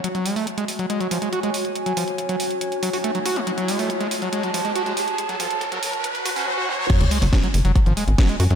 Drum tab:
CC |----------------|----------------|----------------|----------------|
HH |xxooxxoxxxoxxxox|xxoxxxoxxxooxxox|xxooxxoxxxoxxxox|xxoxxxoxxxoo----|
SD |----------------|----------------|----------------|----------------|
BD |----------------|----------------|----------------|----------------|

CC |x---------------|
HH |xxooxxoxxxoxxxox|
SD |----o-------o---|
BD |o---o---o---o---|